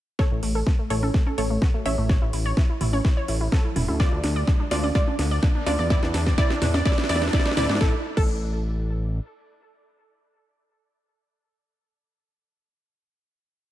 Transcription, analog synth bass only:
0.31 A1
0.43 A1
0.90 A1
1.38 A1
1.86 A1
1.98 A1
2.22 A1
2.33 A1
2.81 A1
3.28 A1
3.76 E1
3.88 D2
4.12 D2
4.24 D2
4.71 D2
5.19 D2
5.66 D2
5.79 E2
6.03 E2
6.14 E2
6.62 E2
7.09 E2
7.57 D2
7.69 G#2
7.81 A1
8.17 A1

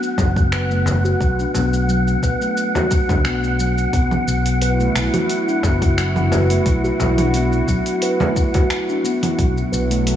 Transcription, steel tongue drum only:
0.19 F#3
0.53 B4
0.71 A3
1.05 F#4
1.39 D4
1.55 B3
1.89 F#3
2.23 B4
2.41 A3
2.75 F#4
3.10 D4
3.26 B3
3.60 F#3
3.94 B3
4.28 F#3
4.62 B4
4.80 A3
5.14 F#4
5.48 D4
5.63 B3
5.98 F#3
6.32 B4
6.50 A3
6.84 F#4
7.19 D4
7.34 B3
7.69 F#3
8.02 B4
8.21 A3
8.55 F#4
8.89 D4
9.04 B3
9.38 F#3
9.72 B4
9.91 A3

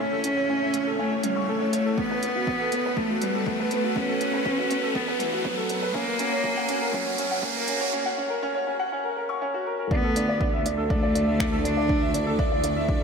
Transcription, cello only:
0.01 C#4
1.00 A3
1.24 G3
1.49 A3
1.98 B3
2.97 A3
3.22 G3
3.47 A3
3.97 C#4
4.95 B3
5.20 E3
5.45 F#3
5.94 A#3
6.94 F#3
7.19 F#3
7.44 A#3
9.91 B3
10.90 A3
11.64 D4

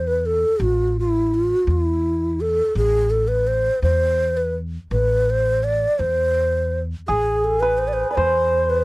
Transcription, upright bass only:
Already playing: E2
0.60 A1
1.67 E2
2.75 A1
3.82 E2
4.91 A1
5.99 E2
7.09 A1
8.17 E2

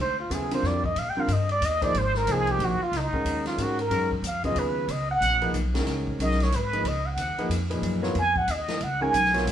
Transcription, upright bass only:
Already playing: D2
0.30 D#2
0.63 F2
0.96 A#2
1.16 muted upright bass stroke
1.28 G2
1.61 D#2
1.93 G#1
2.26 C2
2.59 A#1
2.79 muted upright bass stroke
2.92 C#2
3.13 muted upright bass stroke
3.25 D#2
3.58 G#2
3.90 F#2
4.22 F2
4.55 D#2
4.88 C#2
5.21 A#1
5.53 B1
5.86 C#2
6.19 B1
6.52 G#1
6.84 C#2
7.16 D#2
7.37 muted upright bass stroke
7.49 F2
7.82 F#2
8.15 F2
8.48 D#2
8.81 C#2
9.13 B1
9.46 G#1

